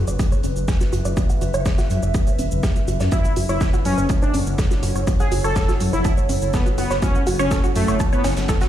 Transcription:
Already playing: E4 G#4 B4 F#5
0.08 F#1 D5, shaker
0.19 G#4, kick, closed hi-hat, shaker
0.32 C#5, shaker
0.36 E5
0.43 F#1 C#4, closed hi-hat, shaker
0.56 F#1, shaker
0.68 G#4, kick, snare, closed hi-hat, shaker
0.81 F#4, snare, shaker
0.93 F#1 F#4, closed hi-hat, shaker
1.05 F#1 D5, shaker
1.17 F#4, kick, closed hi-hat, shaker
1.29 F#5, closed hi-hat, shaker
1.41 F#1 F#4, closed hi-hat, shaker
1.54 F#1 C#5, shaker
1.66 G#4, kick, snare, closed hi-hat, shaker
1.78 F#4, snare, shaker
1.90 F#2, closed hi-hat, shaker
2.03 F#1 D5, shaker
2.14 G#4, kick, closed hi-hat, shaker
2.27 C#5, shaker
2.39 E1 C#4, closed hi-hat, shaker
2.51 F#1, shaker
2.63 G#4, kick, snare, closed hi-hat, shaker
2.76 F#4, shaker
2.88 F#1 F#4, closed hi-hat, shaker
3.00 F#2 D5, snare, shaker
3.12 E4 F#4, kick, closed hi-hat, shaker
3.25 A4 F#5, shaker
3.36 F#1 F#4, closed hi-hat, open hi-hat, shaker
3.49 F#1 E4 C#5, shaker
3.54 C#5
3.61 A4, kick, snare, closed hi-hat, shaker
3.73 F#4, shaker
3.85 F#2 C#4, closed hi-hat, open hi-hat, shaker
3.98 F#1 C#5 F#5, shaker
4.09 A5, kick, closed hi-hat, shaker
4.22 D4 C#5, shaker
4.34 F#1 C#4, closed hi-hat, open hi-hat, shaker
4.47 F#1, shaker
4.58 A4, kick, snare, closed hi-hat, shaker
4.71 F#4, snare, shaker
4.83 F#1 F#4, closed hi-hat, open hi-hat, shaker
4.96 F#1 C#5, shaker
5.07 F#4, kick, closed hi-hat, shaker
5.19 G#4 F#5, closed hi-hat, shaker
5.32 F#1 F#4, closed hi-hat, open hi-hat, shaker
5.44 F#1 A4 C#5, shaker
5.56 A4, kick, snare, closed hi-hat, shaker
5.69 F#4, snare, shaker
5.80 F#2, closed hi-hat, open hi-hat, shaker
5.93 F#1 E4 C#5, shaker
6.04 A5, kick, closed hi-hat, shaker
6.17 C#5, shaker
6.29 F#1 C#4, closed hi-hat, open hi-hat, shaker
6.42 F#1, shaker
6.54 B3 A4, kick, snare, closed hi-hat, shaker
6.66 F#4, shaker
6.78 F#1 B3 F#4, closed hi-hat, open hi-hat, shaker
6.90 F#1 C#5, snare, shaker
7.02 C#4 F#4, kick, closed hi-hat, shaker
7.15 F#5, shaker
7.27 F#1 F#4, closed hi-hat, open hi-hat, shaker
7.39 F#1 C#4 C#5, shaker
7.51 A4, kick, snare, closed hi-hat, shaker
7.64 F#4, shaker
7.76 F#2 A3, closed hi-hat, open hi-hat, shaker
7.88 F#1 C#5, shaker
8.00 A5, kick, closed hi-hat, shaker
8.13 B3 C#5, shaker
8.24 F#1 C#4, snare, closed hi-hat, open hi-hat, shaker
8.37 F#1, snare, closed hi-hat, shaker
8.48 A4, kick, snare, closed hi-hat, shaker
8.61 F#4, snare, closed hi-hat, shaker

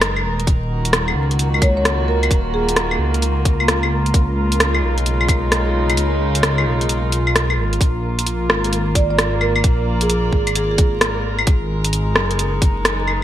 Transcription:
Already playing: F#1 G#3 D#4 A#4 B4
0.01 cross-stick, closed hi-hat
0.16 claves
0.24 D#1
0.40 closed hi-hat
0.47 D#1 D#3 A#3 A#4, kick, closed hi-hat
0.69 F#4
0.79 F4
0.85 closed hi-hat
0.93 cross-stick, closed hi-hat
1.02 A#3
1.08 claves
1.15 C#2
1.31 closed hi-hat
1.39 closed hi-hat
1.54 claves
1.62 C#5, kick, closed hi-hat, claves
1.77 C#5
1.85 cross-stick, closed hi-hat
2.08 A#4
2.23 closed hi-hat, claves
2.30 D#1, kick, closed hi-hat
2.54 G#4
2.69 closed hi-hat
2.76 cross-stick, closed hi-hat
2.91 claves
2.99 C#2
3.14 closed hi-hat
3.22 closed hi-hat
3.45 kick, closed hi-hat
3.60 claves
3.68 cross-stick, closed hi-hat
3.83 claves
4.06 closed hi-hat
4.14 C#2 C#3, kick, closed hi-hat
4.33 G#3
4.52 closed hi-hat
4.58 D#4, cross-stick, closed hi-hat
4.75 claves
4.82 B1
4.98 closed hi-hat
5.06 closed hi-hat
5.21 claves
5.28 kick, closed hi-hat, claves
5.52 cross-stick, closed hi-hat
5.90 closed hi-hat, claves
5.97 C#2, closed hi-hat
6.35 closed hi-hat
6.43 cross-stick, closed hi-hat
6.58 claves
6.66 B1
6.81 closed hi-hat
6.89 closed hi-hat
7.12 closed hi-hat
7.27 claves
7.36 cross-stick, closed hi-hat
7.50 claves
7.57 G#1
7.73 closed hi-hat
7.80 A#1 A#3, kick, closed hi-hat
8.19 closed hi-hat
8.27 closed hi-hat
8.38 A#4
8.50 G#1, cross-stick
8.64 closed hi-hat
8.73 closed hi-hat
8.95 D5, kick, closed hi-hat
9.10 D5
9.18 cross-stick, closed hi-hat
9.41 A#4, claves
9.47 D5
9.56 claves
9.64 A#1, kick, closed hi-hat
10.01 G#4, closed hi-hat
10.10 closed hi-hat
10.32 G#1, kick
10.47 closed hi-hat, claves
10.55 G#4, closed hi-hat
10.71 G#4
10.78 kick, closed hi-hat
11.01 cross-stick, closed hi-hat
11.39 claves
11.47 G#1 G#3, kick, closed hi-hat
11.76 D#4
11.85 closed hi-hat
11.93 closed hi-hat
12.15 F#1, cross-stick
12.31 closed hi-hat
12.39 closed hi-hat
12.62 kick, closed hi-hat
12.85 cross-stick, closed hi-hat
13.07 claves
13.15 B4

